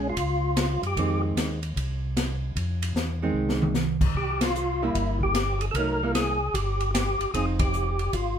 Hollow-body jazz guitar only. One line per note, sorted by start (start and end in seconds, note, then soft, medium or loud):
0.00 0.14 G#3 medium
0.00 0.14 C#4 medium
0.00 0.15 F4 medium
0.97 1.57 D#3 soft
0.97 1.58 G#3 medium
0.97 1.58 C4 medium
3.22 3.73 D#3 medium
3.22 3.73 G#3 medium
3.22 3.74 C4 medium
4.82 5.33 G3 medium
4.82 5.33 A#3 medium
4.82 5.33 E4 medium
5.77 5.99 F#3 medium
5.77 5.99 A3 soft
5.77 6.00 D#4 medium
6.03 6.36 G3 soft
6.03 6.36 A#3 medium
6.03 6.37 E4 medium
7.35 7.95 F3 soft
7.35 7.95 C4 medium
7.35 7.95 D#4 medium